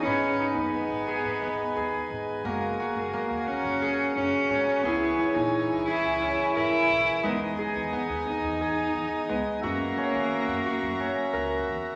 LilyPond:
<<
  \new Staff \with { instrumentName = "Harmonium" } { \time 7/8 \key fis \mixolydian \tempo 4 = 88 << { gis''2.~ gis''8~ | gis''2.~ gis''8 | gis''2.~ gis''8 | gis''2.~ gis''8 |
ais''2.~ ais''8 | } \\ { <dis' b'>2.~ <dis' b'>8 | <fis' ais'>2.~ <fis' ais'>8 | <e cis''>2.~ <e cis''>8 | <dis' dis''>2.~ <dis' dis''>8 |
<fis' e''>2.~ <fis' e''>8 | } >> }
  \new Staff \with { instrumentName = "Harp" } { \time 7/8 \key fis \mixolydian gis'8 dis'4 gis'8 b8 gis'4 | ais8 fis'8 ais4 gis'4 cis'8 | gis'8 cis'4 gis'8 cis'8 ais'4 | b8 gis'8 b4 gis'4 b8 |
fis'8 cis'4 fis'8 cis'8 ais'4 | }
  \new Staff \with { instrumentName = "Vibraphone" } { \time 7/8 \key fis \mixolydian gis'2. r8 | gis'2.~ gis'8 | e'2.~ e'8 | dis'2.~ dis'8 |
cis'2. r8 | }
  \new Staff \with { instrumentName = "Cello" } { \time 7/8 \key fis \mixolydian cis'8. b16 b2 r8 | gis8. ais8. cis'4 cis'4 | b8. dis'8. e'4 e'4 | gis8. b8. dis'4. gis8 |
ais2. r8 | }
  \new Staff \with { instrumentName = "Upright bass" } { \clef bass \time 7/8 \key fis \mixolydian gis,,8 r16 fis,8 gis,,16 r16 gis,,8 r16 dis,8 gis,,16 r16 | fis,,8 r16 fis,,16 r16 dis,8 fis,,8. fis,,16 r16 gis,16 r16 | cis,8 r16 ais,8 cis,16 r16 cis,8 r16 gis,,8 b,,16 r16 | e,8 r16 e,16 r16 dis,8 e,8. e,16 r16 cis,16 r16 |
fis,8 r16 dis8 fis,16 r16 fis,8 r16 cis,8 e,16 r16 | }
>>